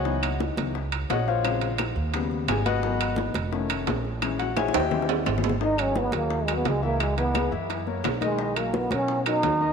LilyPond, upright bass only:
\new Staff \with { instrumentName = "Upright bass" } { \clef bass \time 4/4 \key gis \minor \tempo 4 = 173 cis,4. cis,4. ais,,4~ | ais,,4. dis,4. gis,,4~ | gis,,4. eis,,4. ais,,4~ | ais,,4. dis,4. gis,,4~ |
gis,,4. dis,4. cis,4~ | cis,4. fis,4. b,,4~ | b,,4. b,4. dis,4 | }